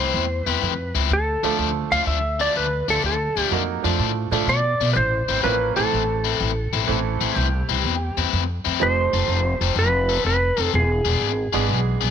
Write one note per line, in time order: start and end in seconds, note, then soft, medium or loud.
0.00 0.11 C2 medium
0.00 0.25 A2 medium
0.00 0.25 E3 medium
0.00 0.53 E3 medium
0.00 0.53 A3 medium
0.00 0.25 C4 medium
0.00 0.53 C4 medium
0.00 0.24 E4 medium
0.00 0.54 E4 medium
0.00 0.54 A4 medium
0.00 0.45 C5 medium
0.14 0.41 E2 medium
0.45 0.60 E2 medium
0.45 0.73 A2 medium
0.45 0.73 E3 medium
0.45 0.73 C4 medium
0.45 0.72 E4 medium
0.45 0.93 B4 medium
0.62 0.89 F2 medium
0.94 1.08 C#2 medium
0.94 1.12 A2 medium
0.94 1.11 E3 medium
0.94 1.11 C4 medium
0.94 1.11 E4 medium
1.10 1.38 D2 loud
1.10 1.57 A4 medium
1.43 1.56 D2 medium
1.43 1.70 D3 medium
1.43 2.04 F3 medium
1.43 1.69 F3 medium
1.43 2.04 A3 medium
1.43 1.69 A3 medium
1.43 1.69 D4 medium
1.43 2.05 D4 medium
1.43 2.05 F4 medium
1.43 2.05 A4 medium
1.58 1.86 D2 medium
1.91 2.04 D2 medium
1.91 2.18 D3 medium
1.91 2.18 F3 medium
1.91 2.18 A3 medium
1.91 2.17 D4 medium
1.91 2.07 F5 medium
2.06 2.47 D2 medium
2.06 2.41 E5 medium
2.40 2.66 D3 medium
2.40 2.66 F3 medium
2.40 2.66 A3 medium
2.40 2.65 D4 medium
2.40 2.55 D5 medium
2.56 2.83 D2 medium
2.56 2.90 B4 medium
2.88 3.01 D2 medium
2.88 3.14 D3 medium
2.88 3.14 F3 medium
2.88 3.14 A3 medium
2.88 3.14 D4 medium
2.88 3.05 A4 medium
3.03 3.30 D2 medium
3.03 3.50 A4 medium
3.36 3.49 D2 medium
3.36 3.62 D3 medium
3.36 3.62 F3 medium
3.36 3.62 A3 medium
3.36 3.62 D4 medium
3.51 3.78 F2 medium
3.51 3.81 F#3 medium
3.51 3.81 A#3 medium
3.51 3.82 D#4 medium
3.51 3.81 F#4 medium
3.51 3.82 A#4 medium
3.83 3.97 F2 medium
3.83 4.11 D3 medium
3.83 4.25 F3 medium
3.83 4.10 F3 medium
3.83 4.26 A3 soft
3.83 4.10 A3 medium
3.83 4.26 D4 medium
3.83 4.10 D4 medium
3.83 4.26 F4 medium
3.83 4.26 A4 medium
3.99 4.27 A2 medium
4.31 4.45 A2 medium
4.31 4.59 D3 medium
4.31 4.46 F3 medium
4.31 4.58 F3 medium
4.31 4.46 A3 medium
4.31 4.58 A3 medium
4.31 4.47 D4 medium
4.31 4.58 D4 medium
4.31 4.47 F4 medium
4.31 4.47 A4 medium
4.47 4.75 B2 medium
4.47 4.89 D5 medium
4.80 4.94 B2 medium
4.80 4.97 D3 medium
4.80 4.97 F3 medium
4.80 4.97 A3 medium
4.80 4.96 D4 medium
4.93 5.23 A1 loud
4.93 4.96 B4 medium
4.93 5.43 C5 loud
5.28 5.42 A1 medium
5.28 5.54 A2 medium
5.28 5.54 E3 medium
5.28 5.54 C4 medium
5.28 5.54 E4 medium
5.43 5.71 A1 medium
5.43 5.73 F3 medium
5.43 5.73 A#3 medium
5.43 5.74 C#4 medium
5.43 5.74 F4 medium
5.43 5.74 A#4 medium
5.43 5.76 B4 medium
5.76 5.90 A1 medium
5.76 6.03 A2 medium
5.76 6.18 E3 medium
5.76 6.03 E3 medium
5.76 6.18 A3 medium
5.76 6.18 C4 medium
5.76 6.02 C4 medium
5.76 6.02 E4 medium
5.76 6.19 E4 medium
5.76 7.38 A4 medium
5.76 6.19 A4 medium
5.92 6.33 A1 medium
6.24 6.51 A2 medium
6.24 6.50 E3 medium
6.24 6.50 C4 medium
6.24 6.50 E4 medium
6.40 6.68 A1 medium
6.73 6.86 A1 medium
6.73 6.99 A2 medium
6.73 6.99 E3 medium
6.73 6.99 C4 medium
6.73 6.99 E4 medium
6.87 7.16 A1 medium
6.87 8.23 E3 medium
6.87 8.23 A3 medium
6.87 8.23 C4 medium
6.87 8.23 E4 medium
6.87 8.24 A4 medium
7.21 7.34 A1 medium
7.21 7.47 A2 medium
7.21 7.47 E3 medium
7.21 7.47 C4 medium
7.21 7.46 E4 medium
7.36 7.63 C2 loud
7.36 8.29 G4 medium
7.69 7.82 C2 medium
7.69 7.95 A2 medium
7.69 7.95 E3 medium
7.69 7.95 C4 medium
7.69 7.94 E4 medium
7.84 8.11 E2 medium
8.17 8.30 E2 medium
8.17 8.43 A2 medium
8.17 8.43 E3 medium
8.17 8.43 C4 medium
8.17 8.43 E4 medium
8.33 8.60 F2 medium
8.65 8.79 F2 medium
8.65 8.81 A2 medium
8.65 8.81 E3 medium
8.65 8.81 C4 medium
8.65 8.81 E4 medium
8.80 9.08 F1 medium
8.80 10.15 F3 medium
8.80 10.15 A3 medium
8.80 10.16 C4 medium
8.80 10.16 D#4 medium
8.80 10.16 G4 medium
8.80 9.78 C5 medium
9.13 9.26 F1 medium
9.13 9.39 F3 medium
9.13 9.39 C4 medium
9.13 9.39 D#4 medium
9.13 9.39 A4 medium
9.28 9.55 F1 medium
9.61 9.74 F1 medium
9.61 9.88 F3 medium
9.61 9.87 C4 medium
9.61 9.87 D#4 medium
9.61 9.87 A4 medium
9.76 10.16 F1 loud
9.76 10.25 B4 medium
10.09 10.35 F3 medium
10.09 10.35 C4 medium
10.09 10.35 D#4 medium
10.09 10.35 A4 medium
10.25 10.52 F1 medium
10.25 10.71 B4 medium
10.57 10.71 F1 medium
10.57 10.73 F3 medium
10.57 10.73 C4 medium
10.57 10.73 D#4 medium
10.57 10.73 A4 medium
10.74 11.00 E1 loud
10.74 12.10 G#4 medium
11.05 11.18 E1 medium
11.05 11.31 E3 medium
11.05 11.31 B3 medium
11.05 11.31 D4 medium
11.05 11.31 G#4 medium
11.21 11.48 G#1 medium
11.53 11.66 G#1 medium
11.53 12.10 E3 medium
11.53 11.79 E3 medium
11.53 12.10 G#3 medium
11.53 12.10 B3 medium
11.53 11.79 B3 medium
11.53 11.79 D4 medium
11.53 12.10 D4 medium
11.53 11.78 G#4 medium
11.53 12.10 G#4 medium
11.69 11.96 B1 medium
12.01 12.10 B1 medium
12.01 12.10 E3 medium
12.01 12.10 B3 medium
12.01 12.10 D4 medium
12.01 12.10 G#4 medium